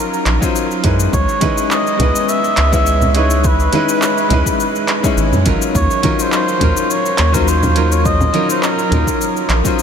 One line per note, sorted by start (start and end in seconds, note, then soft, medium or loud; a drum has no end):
0.00 0.37 F#3 medium
0.00 0.38 C#4 medium
0.00 0.38 D#4 medium
0.00 0.39 F4 medium
0.00 0.40 A#4 medium
0.00 0.56 A#4 loud
0.14 cabasa soft
0.26 0.39 A#1 loud
0.26 clap medium
0.26 closed hi-hat medium
0.40 0.80 F#3 medium
0.40 0.81 C#4 medium
0.40 0.81 D#4 medium
0.40 0.81 F4 medium
0.40 0.82 C5 medium
0.40 kick loud
0.40 cabasa medium
0.56 cabasa medium
0.71 cabasa soft
0.84 1.09 F#2 medium
0.84 1.38 G#3 medium
0.84 1.39 C#4 medium
0.84 1.39 D#4 medium
0.84 1.39 E4 medium
0.84 1.40 B4 medium
0.84 kick loud
0.84 closed hi-hat medium
1.00 cabasa medium
1.13 1.26 C#2 loud
1.13 1.73 C#5 loud
1.13 kick loud
1.13 cabasa medium
1.29 cabasa soft
1.41 1.96 G#3 medium
1.41 1.96 C#4 medium
1.41 1.96 D#4 medium
1.41 1.97 E4 medium
1.41 1.97 B4 loud
1.41 kick loud
1.41 closed hi-hat medium
1.41 high conga medium
1.58 cabasa medium
1.71 2.31 D#5 loud
1.71 clap medium
1.71 cabasa medium
1.87 cabasa soft
1.97 2.12 C#2 medium
1.97 2.68 G#3 medium
1.97 2.69 B3 medium
1.97 2.68 C#4 medium
1.97 kick medium
1.97 closed hi-hat medium
1.97 low conga medium
2.01 2.70 E4 medium
2.01 2.70 B4 medium
2.16 cabasa medium
2.29 2.73 E5 loud
2.29 cabasa medium
2.44 cabasa soft
2.57 3.69 C#2 medium
2.57 clap medium
2.57 closed hi-hat medium
2.72 3.11 G#3 medium
2.72 3.12 B3 medium
2.72 3.12 C#4 medium
2.72 3.12 E4 medium
2.72 3.13 C#5 loud
2.72 3.13 E5 loud
2.72 kick loud
2.72 cabasa medium
2.86 cabasa medium
3.02 low conga medium
3.02 cabasa soft
3.15 3.69 G#3 medium
3.15 3.69 C#4 medium
3.15 3.70 D#4 medium
3.15 3.70 E4 medium
3.15 3.71 B4 medium
3.15 3.48 C#5 loud
3.15 closed hi-hat medium
3.30 cabasa medium
3.44 5.18 B4 loud
3.44 kick loud
3.44 cabasa medium
3.60 cabasa soft
3.73 4.27 G#3 medium
3.73 4.27 C#4 medium
3.73 4.28 D#4 medium
3.73 4.28 E4 medium
3.73 4.28 B4 loud
3.73 closed hi-hat medium
3.73 high conga medium
3.89 cabasa medium
4.02 clap medium
4.02 cabasa medium
4.18 cabasa soft
4.29 4.43 C#2 medium
4.29 4.99 G#3 medium
4.29 5.00 C#4 medium
4.29 5.00 D#4 medium
4.29 5.01 E4 medium
4.29 closed hi-hat medium
4.29 low conga medium
4.34 5.02 B4 medium
4.46 kick medium
4.46 cabasa medium
4.60 cabasa medium
4.75 cabasa soft
4.88 clap medium
4.88 closed hi-hat medium
5.03 5.42 G#3 medium
5.03 5.43 C#4 medium
5.03 5.43 D#4 medium
5.03 5.43 E4 medium
5.03 5.44 C#5 medium
5.03 kick loud
5.03 cabasa medium
5.17 5.34 G#1 loud
5.17 cabasa medium
5.32 5.48 F#2 medium
5.32 low conga medium
5.32 cabasa soft
5.45 5.59 G#1 loud
5.45 6.00 F#3 medium
5.45 6.00 C#4 medium
5.45 6.00 D#4 medium
5.45 6.01 F4 medium
5.45 6.01 A#4 medium
5.45 kick loud
5.45 closed hi-hat medium
5.62 cabasa medium
5.75 5.88 D#2 loud
5.75 6.23 C#5 loud
5.75 kick loud
5.75 cabasa medium
5.91 cabasa soft
6.02 6.57 F#3 medium
6.02 6.58 C#4 medium
6.02 6.58 D#4 medium
6.02 6.58 F4 medium
6.02 6.59 A#4 loud
6.02 kick loud
6.02 closed hi-hat medium
6.02 high conga medium
6.19 6.33 C5 medium
6.19 cabasa medium
6.32 6.92 C5 loud
6.32 clap medium
6.32 cabasa medium
6.48 cabasa soft
6.58 6.74 D#2 medium
6.58 7.29 F#3 medium
6.58 7.30 C#4 medium
6.58 7.30 D#4 medium
6.58 7.31 F4 medium
6.58 kick medium
6.58 closed hi-hat medium
6.58 low conga loud
6.63 7.32 A#4 medium
6.77 cabasa medium
6.90 7.36 C#5 loud
6.90 cabasa medium
7.06 cabasa soft
7.18 8.31 D#2 medium
7.18 clap medium
7.18 closed hi-hat medium
7.32 7.72 F#3 medium
7.32 7.73 C#4 medium
7.32 7.73 D#4 medium
7.32 7.73 F4 medium
7.32 7.50 A#4 medium
7.32 7.74 C5 loud
7.32 kick loud
7.32 cabasa medium
7.48 7.94 C5 loud
7.48 cabasa medium
7.63 low conga medium
7.63 cabasa soft
7.75 8.30 F#3 medium
7.75 8.30 C#4 medium
7.75 8.31 D#4 medium
7.75 8.31 F4 medium
7.75 8.31 A#4 medium
7.75 closed hi-hat medium
7.92 8.08 C#5 loud
7.92 cabasa medium
8.05 8.50 D#5 loud
8.05 kick loud
8.05 cabasa medium
8.21 low conga medium
8.21 cabasa soft
8.33 8.88 F#3 loud
8.33 8.88 C#4 medium
8.33 8.89 D#4 medium
8.33 8.89 F4 medium
8.33 8.89 A#4 loud
8.33 closed hi-hat medium
8.33 high conga medium
8.50 8.65 C5 medium
8.50 cabasa medium
8.63 9.50 A#4 medium
8.63 clap medium
8.63 cabasa medium
8.79 cabasa soft
8.89 9.05 D#2 medium
8.89 9.60 F#3 medium
8.89 9.60 C#4 medium
8.89 9.61 D#4 medium
8.89 closed hi-hat medium
8.89 low conga medium
8.93 9.62 F4 medium
8.93 9.62 A#4 medium
9.07 kick medium
9.07 cabasa medium
9.21 cabasa medium
9.37 cabasa soft
9.49 9.62 A#1 loud
9.49 clap medium
9.49 closed hi-hat medium
9.64 9.82 F#3 medium
9.64 9.82 C#4 medium
9.64 9.82 D#4 medium
9.64 9.82 F4 medium
9.64 9.82 C5 medium
9.64 kick loud
9.64 cabasa medium
9.79 cabasa medium